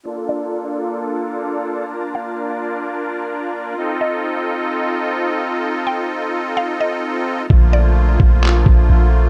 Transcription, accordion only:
0.06 3.74 A#3 medium
0.06 3.74 D4 medium
0.06 7.46 F4 medium
0.06 1.90 A4 medium
0.06 3.74 D5 medium
1.92 3.76 A#4 medium
3.78 7.46 C4 medium
3.78 7.46 D#4 medium
3.78 7.46 A4 medium
3.78 7.46 D#5 medium
7.50 9.29 D3 medium
7.50 9.29 F3 medium
7.50 9.29 A3 medium
7.50 9.29 A#3 medium
7.50 9.29 F4 medium

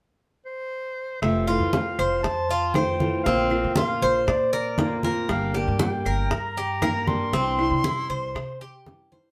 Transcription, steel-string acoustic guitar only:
1.22 1.46 C3 medium
1.22 1.47 E3 medium
1.22 1.47 A3 medium
1.22 1.47 C4 medium
1.22 1.47 F4 medium
1.48 1.73 E3 medium
1.48 1.72 A3 medium
1.48 1.72 C4 medium
1.48 1.72 F4 medium
1.73 2.23 A3 soft
1.73 2.23 C4 soft
1.73 2.23 F4 soft
2.23 muted steel-string acoustic guitar stroke soft
2.75 2.99 E3 medium
2.75 2.99 A3 soft
2.75 2.99 C4 medium
2.75 2.98 F4 medium
2.99 3.25 E3 medium
2.99 3.25 A3 medium
2.99 3.25 C4 medium
2.99 3.24 F4 medium
3.25 3.50 D3 medium
3.25 3.50 A#3 medium
3.25 3.51 C4 medium
3.25 3.50 F4 medium
3.51 3.76 A#3 soft
3.51 3.76 C4 medium
3.51 3.76 F4 medium
3.76 4.25 D3 soft
3.76 4.26 A#3 medium
3.76 4.26 C4 medium
3.76 4.26 F4 medium
4.27 muted steel-string acoustic guitar stroke medium
4.78 5.03 D3 medium
4.78 5.03 A#3 medium
4.78 5.03 C4 soft
4.78 5.02 F4 soft
5.03 5.28 A#3 medium
5.03 5.28 C4 medium
5.03 5.28 F4 medium
5.29 5.54 D3 medium
5.29 5.54 G3 medium
5.29 5.54 A#3 medium
5.29 5.53 D4 medium
5.29 5.53 G4 medium
5.54 5.78 G3 soft
5.54 5.79 A#3 medium
5.54 5.78 D4 medium
5.54 5.79 G4 medium
5.79 6.29 G3 soft
5.79 6.30 A#3 soft
5.79 6.29 D4 soft
5.79 6.30 G4 medium
6.30 muted steel-string acoustic guitar stroke medium
6.82 7.06 G3 medium
6.82 7.07 A#3 medium
6.82 7.07 D4 medium
6.82 7.06 G4 medium
7.07 7.33 G3 soft
7.07 7.33 A#3 medium
7.07 7.32 D4 medium
7.07 7.32 G4 medium
7.33 7.58 C3 medium
7.33 7.58 E3 medium
7.33 7.58 G3 medium
7.33 7.58 D4 medium
7.33 7.57 E4 medium
7.58 7.82 E3 medium
7.58 7.83 G3 medium
7.58 7.83 D4 medium
7.58 7.83 E4 medium
7.84 8.34 G3 soft
7.84 8.34 D4 soft
7.84 8.35 E4 soft
8.35 muted steel-string acoustic guitar stroke medium
8.86 9.11 E3 soft
8.86 9.11 G3 soft
8.86 9.11 D4 soft
8.86 9.10 E4 soft
9.11 9.31 E3 medium
9.11 9.31 G3 medium
9.11 9.31 D4 medium
9.11 9.31 E4 medium

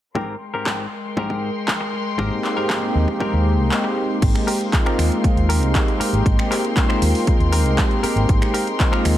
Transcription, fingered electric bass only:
2.19 2.29 G#1 medium
2.95 3.06 D#2 medium
3.34 3.59 D#2 loud
3.59 3.69 C2 medium
4.22 4.33 G#1 medium
4.99 5.09 D#2 medium
5.24 muted fingered electric bass stroke soft
5.37 5.62 D#2 loud
5.62 5.72 C2 medium
6.00 muted fingered electric bass stroke soft
6.13 6.23 G#1 medium
6.26 6.36 G#1 medium
7.02 7.12 D#2 medium
7.40 7.65 D#2 loud
7.65 7.75 C2 medium
8.03 muted fingered electric bass stroke soft
8.16 8.26 G#1 medium
8.29 8.39 G#1 medium
9.05 9.16 D#2 medium

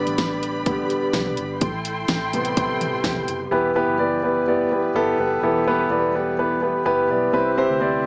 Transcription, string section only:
0.00 1.60 G4 medium
0.00 1.58 B4 medium
0.00 1.57 D5 medium
0.00 1.57 B5 medium
1.61 3.51 E4 medium
1.61 3.50 A4 medium
1.61 3.51 G5 medium
1.61 3.51 C6 medium
3.50 7.29 E3 soft
3.50 8.06 G3 soft
3.50 8.06 B3 soft
3.50 8.06 G4 soft
3.50 7.30 B4 medium
7.32 8.06 C3 medium
7.32 8.06 E4 soft

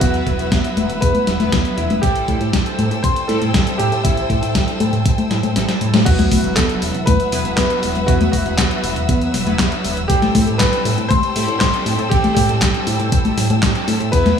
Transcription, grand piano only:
0.00 1.05 F#4 loud
1.01 1.79 B4 loud
1.77 2.03 E4 medium
2.02 3.06 G4 medium
3.03 3.29 C5 loud
3.28 3.75 A4 medium
3.78 4.05 G4 medium
4.03 5.51 E4 medium
6.05 6.58 F#4 loud
6.56 7.08 A4 loud
7.06 7.53 B4 loud
7.56 8.09 B4 loud
8.06 8.30 F#4 medium
8.32 9.80 F#4 medium
10.08 10.61 G4 loud
10.58 11.11 B4 loud
11.09 11.57 C5 loud
11.59 12.12 C5 loud
12.09 12.33 G4 medium
12.35 13.83 G4 loud
14.12 14.39 B4 loud

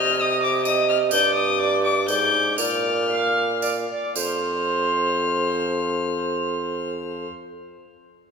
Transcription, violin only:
0.00 0.22 F6 loud
0.21 0.42 D#6 loud
0.43 0.65 D6 loud
0.65 0.88 D#6 loud
0.89 0.97 F6 loud
1.12 1.34 G6 loud
1.35 1.60 D#6 loud
1.59 1.83 D6 loud
1.84 2.08 D6 loud
2.08 2.57 G6 loud
2.59 3.60 F6 medium
4.17 7.27 F6 medium

